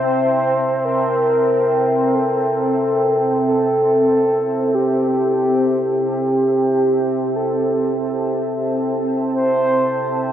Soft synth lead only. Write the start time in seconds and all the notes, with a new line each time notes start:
Already playing: C5
0.85 A#4
2.14 A4
3.45 A4
4.75 G4
6.05 G4
7.36 A4
9.33 C5